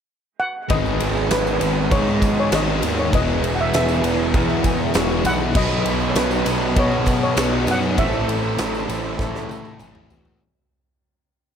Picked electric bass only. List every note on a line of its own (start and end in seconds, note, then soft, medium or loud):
0.70 0.99 G#1 medium
1.01 1.29 G#1 medium
1.31 1.59 G#1 medium
1.61 1.90 G#1 medium
1.92 2.49 G#2 loud
2.52 2.80 G#1 medium
2.82 3.11 D#2 medium
3.14 3.41 E1 medium
3.42 3.71 E1 medium
3.72 4.01 E1 medium
4.03 4.32 E1 medium
4.34 4.91 E2 loud
4.95 5.23 E1 medium
5.24 5.53 B1 loud
5.55 5.83 B1 loud
5.85 6.13 B1 medium
6.15 6.43 B1 medium
6.46 6.74 B1 medium
6.77 7.33 B2 medium
7.37 7.65 B1 medium
7.67 7.96 F#2 medium
7.98 8.26 A1 medium
8.28 8.56 A1 medium
8.58 8.87 A1 medium
8.89 9.17 A1 loud
9.19 9.76 A2 medium
9.81 10.09 A1 medium
10.12 10.40 E2 medium